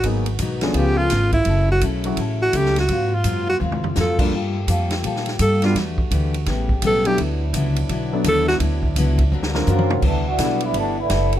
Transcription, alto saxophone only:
0, 0, Header, 1, 2, 480
1, 0, Start_track
1, 0, Tempo, 356930
1, 59, Time_signature, 4, 2, 24, 8
1, 15325, End_track
2, 0, Start_track
2, 0, Title_t, "Alto saxophone"
2, 0, Program_c, 0, 65
2, 873, Note_on_c, 0, 62, 65
2, 1043, Note_on_c, 0, 67, 86
2, 1063, Note_off_c, 0, 62, 0
2, 1317, Note_on_c, 0, 65, 95
2, 1337, Note_off_c, 0, 67, 0
2, 1788, Note_off_c, 0, 65, 0
2, 1797, Note_on_c, 0, 64, 83
2, 2246, Note_off_c, 0, 64, 0
2, 2310, Note_on_c, 0, 66, 81
2, 2460, Note_off_c, 0, 66, 0
2, 3260, Note_on_c, 0, 66, 85
2, 3459, Note_on_c, 0, 67, 87
2, 3479, Note_off_c, 0, 66, 0
2, 3743, Note_off_c, 0, 67, 0
2, 3766, Note_on_c, 0, 66, 75
2, 4231, Note_on_c, 0, 65, 76
2, 4251, Note_off_c, 0, 66, 0
2, 4691, Note_off_c, 0, 65, 0
2, 4699, Note_on_c, 0, 66, 78
2, 4799, Note_off_c, 0, 66, 0
2, 5388, Note_on_c, 0, 69, 80
2, 5647, Note_off_c, 0, 69, 0
2, 5658, Note_on_c, 0, 66, 41
2, 5741, Note_off_c, 0, 66, 0
2, 7280, Note_on_c, 0, 69, 93
2, 7552, Note_off_c, 0, 69, 0
2, 7600, Note_on_c, 0, 65, 64
2, 7744, Note_off_c, 0, 65, 0
2, 9233, Note_on_c, 0, 69, 101
2, 9501, Note_on_c, 0, 67, 91
2, 9521, Note_off_c, 0, 69, 0
2, 9665, Note_off_c, 0, 67, 0
2, 11145, Note_on_c, 0, 69, 104
2, 11405, Note_off_c, 0, 69, 0
2, 11412, Note_on_c, 0, 66, 90
2, 11513, Note_off_c, 0, 66, 0
2, 15325, End_track
0, 0, End_of_file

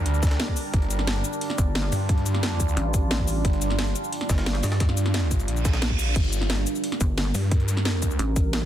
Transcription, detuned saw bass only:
0, 0, Header, 1, 2, 480
1, 0, Start_track
1, 0, Key_signature, -2, "minor"
1, 0, Tempo, 338983
1, 1041, Time_signature, 4, 2, 24, 8
1, 12254, End_track
2, 0, Start_track
2, 0, Title_t, "Detuned saw bass"
2, 0, Program_c, 0, 39
2, 82, Note_on_c, 0, 38, 101
2, 542, Note_off_c, 0, 38, 0
2, 1042, Note_on_c, 0, 31, 101
2, 1742, Note_off_c, 0, 31, 0
2, 2722, Note_on_c, 0, 43, 97
2, 3903, Note_off_c, 0, 43, 0
2, 4882, Note_on_c, 0, 31, 100
2, 5582, Note_off_c, 0, 31, 0
2, 6561, Note_on_c, 0, 43, 95
2, 7742, Note_off_c, 0, 43, 0
2, 7761, Note_on_c, 0, 34, 96
2, 8702, Note_off_c, 0, 34, 0
2, 8721, Note_on_c, 0, 31, 98
2, 9422, Note_off_c, 0, 31, 0
2, 10402, Note_on_c, 0, 43, 98
2, 11582, Note_off_c, 0, 43, 0
2, 12254, End_track
0, 0, End_of_file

